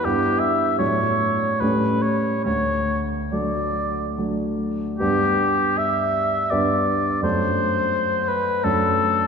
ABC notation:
X:1
M:3/4
L:1/8
Q:1/4=78
K:D
V:1 name="Oboe"
G e c2 B c | c z d2 z2 | [K:G] G2 e2 d2 | c3 B A2 |]
V:2 name="Grand piano"
[G,,G,B,E]2 [A,,F,A,D]2 [A,,G,A,C]2 | D,,2 [F,A,D]2 [F,A,D]2 | [K:G] [G,,G,B,D]4 [G,,G,B,D]2 | [F,,A,D]4 [F,,A,D]2 |]